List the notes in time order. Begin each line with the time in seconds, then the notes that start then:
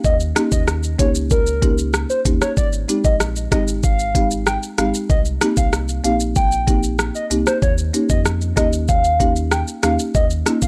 0.04 D#2 D#5, kick, shaker
0.20 shaker
0.35 A#3 C#4 D#4 G4, cross-stick, closed hi-hat, shaker
0.52 D#2 D#5, kick, shaker
0.68 cross-stick, shaker
0.83 shaker
0.99 C#2 A#3 C#4 D#4 G4 C#5, kick, closed hi-hat, shaker
1.15 shaker
1.31 A#4, kick, shaker
1.47 shaker
1.62 A#3 C#4 D#4 G4, kick, closed hi-hat, shaker
1.78 shaker
1.94 cross-stick, shaker
2.10 C5, shaker
2.25 D#2 A#3 C#4 D#4 G4, kick, closed hi-hat, shaker
2.41 C#5, cross-stick, shaker
2.57 G#1 D5, kick, shaker
2.73 shaker
2.88 G#3 C4 D#4 G4, closed hi-hat, shaker
3.04 A#1 D#5, kick, shaker
3.20 cross-stick, shaker
3.36 shaker
3.51 G#1 G#3 C4 D#4 G4 D#5, kick, cross-stick, closed hi-hat, shaker
3.68 shaker
3.83 F5, kick, shaker
3.99 shaker
4.14 G#3 C4 D#4 G4, kick, closed hi-hat, shaker
4.31 shaker
4.47 G5, cross-stick, shaker
4.63 shaker
4.78 G#1 G#3 C4 D#4 G4 F5, cross-stick, closed hi-hat, shaker
4.94 shaker
5.10 C2 D#5, kick, shaker
5.25 shaker
5.41 A#3 C4 D#4 G4, cross-stick, closed hi-hat, shaker
5.57 C2 F5, kick, shaker
5.73 cross-stick, shaker
5.89 shaker
6.04 A#1 A#3 C4 D#4 G4 F5, closed hi-hat, shaker
6.20 shaker
6.36 G5, kick, shaker
6.52 shaker
6.67 A#3 C4 D#4 G4, kick, closed hi-hat, shaker
6.83 shaker
6.99 cross-stick, shaker
7.15 D#5, shaker
7.30 C2 A#3 C4 D#4 G4, closed hi-hat, shaker
7.47 C5, cross-stick, shaker
7.62 D#2 C#5, kick, shaker
7.78 shaker
7.93 A#3 C#4 D#4 G4, closed hi-hat, shaker
8.09 F2 D#5, kick, shaker
8.26 cross-stick, shaker
8.41 shaker
8.56 D#2 A#3 C#4 D#4 G4 D#5, kick, cross-stick, closed hi-hat, shaker
8.73 shaker
8.88 F5, kick, shaker
9.04 shaker
9.20 A#3 C#4 D#4 G4, kick, closed hi-hat, shaker
9.36 shaker
9.51 G5, cross-stick, shaker
9.68 shaker
9.83 D#2 A#3 C#4 D#4 G4 F5, cross-stick, closed hi-hat, shaker
9.99 shaker
10.15 D#2 D#5, kick, shaker
10.30 shaker
10.46 A#3 C#4 D#4 F4, cross-stick, closed hi-hat, shaker
10.62 D#2 F5, kick, shaker